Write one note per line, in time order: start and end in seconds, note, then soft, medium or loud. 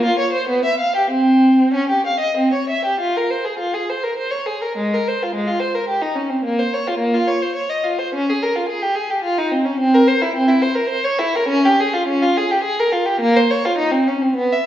0.05 0.20 F4 medium
0.19 0.34 C#5 medium
0.33 0.48 C5 medium
0.49 0.64 B3 medium
0.65 0.80 E5 medium
0.80 0.95 F5 medium
0.96 1.11 G4 medium
1.11 1.73 C4 medium
1.74 1.90 C#4 medium
1.89 2.05 G4 soft
2.07 2.22 F5 medium
2.20 2.36 D#5 medium
2.38 2.53 C4 medium
2.54 2.69 C#5 medium
2.70 2.85 E5 medium
2.85 3.00 G4 soft
3.00 3.15 F4 medium
3.17 3.31 A#4 soft
3.31 3.45 C5 soft
3.45 3.59 G#4 soft
3.59 3.73 F4 soft
3.74 3.88 G#4 soft
3.90 4.03 C5 soft
4.03 4.17 A#4 soft
4.18 4.31 C5 soft
4.31 4.46 C#5 soft
4.46 4.61 G#4 soft
4.62 4.77 A#4 soft
4.77 4.92 G#3 medium
4.94 5.07 A#4 soft
5.08 5.21 C5 soft
5.23 5.35 F4 soft
5.35 5.48 G#3 soft
5.48 5.61 F4 soft
5.60 5.74 C5 soft
5.75 5.89 A#4 soft
5.89 6.02 G4 soft
6.02 6.16 D#4 soft
6.16 6.30 C#4 soft
6.30 6.44 C4 soft
6.45 6.58 A#3 medium
6.59 6.73 C5 soft
6.74 6.87 C#5 medium
6.87 7.00 F4 soft
6.99 7.12 A#3 soft
7.14 7.27 F4 soft
7.28 7.41 C#5 medium
7.43 7.55 C5 medium
7.55 7.69 C#5 medium
7.70 7.84 D#5 soft
7.84 7.98 F4 soft
7.99 8.13 C5 soft
8.15 8.28 C#4 medium
8.30 8.43 G#4 medium
8.43 8.56 A#4 medium
8.56 8.69 F4 soft
8.69 8.82 G#4 medium
8.82 8.96 G4 medium
8.95 9.09 G#4 medium
9.11 9.24 G4 medium
9.24 9.37 F4 medium
9.38 9.52 D#4 medium
9.51 9.66 C4 medium
9.65 9.79 C#4 medium
9.80 9.93 C4 medium
9.94 10.07 A#4 medium
10.08 10.21 C5 medium
10.22 10.35 E4 medium
10.36 10.48 C4 medium
10.48 10.62 E4 medium
10.62 10.75 C5 medium
10.75 10.89 A#4 medium
10.90 11.03 C5 medium
11.04 11.18 C#5 medium
11.19 11.34 E4 medium
11.36 11.50 A#4 medium
11.48 11.63 C#4 medium
11.65 11.79 G4 medium
11.80 11.94 G#4 medium
11.94 12.08 F4 medium
12.08 12.22 C#4 medium
12.23 12.37 F4 medium
12.37 12.51 G#4 medium
12.51 12.65 G4 medium
12.64 12.78 G#4 medium
12.80 12.94 A#4 medium
12.92 13.07 F4 medium
13.06 13.21 G4 medium
13.20 13.35 A#3 medium
13.37 13.51 C5 medium
13.51 13.65 C#5 medium
13.65 13.80 F4 medium
13.78 13.93 D#4 medium
13.92 14.07 C4 medium
14.08 14.23 C#4 medium
14.22 14.37 C4 medium
14.36 14.52 B3 medium
14.53 14.66 E5 medium